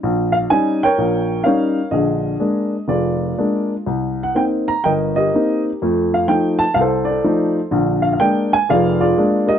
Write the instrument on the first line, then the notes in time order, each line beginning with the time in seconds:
upright piano
0.03 A#1
0.32 F5
0.50 G3 C#4 D#4 G#5
0.83 A#4 C#5 G5
0.98 A#1
1.44 G3 C#4 D#4 A#4 C#5 F5
1.91 A#1 D3 G#4 D#5
2.40 G#3 A#3 D4
2.88 F1 F4 G#4 D5
3.38 G#3 A#3 D4
3.86 C2
4.23 F#5
4.35 A#3 C4 D#4 G5
4.68 A#5
4.84 G1 A#4 D#5 G5
5.16 G4 A#4 D#5
5.34 A#3 C4 D#4
5.82 F2 A3
6.14 F5
6.28 F3 A3 D#4 G5
6.59 A5
6.74 C2 F5
6.80 A4 C5
7.05 D5
7.11 A4
7.24 F3 A3 D#4
7.71 A#1 D3
8.02 F5
8.13 F5
8.20 G#3 A#3 D4 G5
8.53 G#5
8.69 F1 F2 G#4 D5 F5
9.01 F4 G#4 D5
9.17 G#3 A#3 D4
9.47 G4 A#4 D#5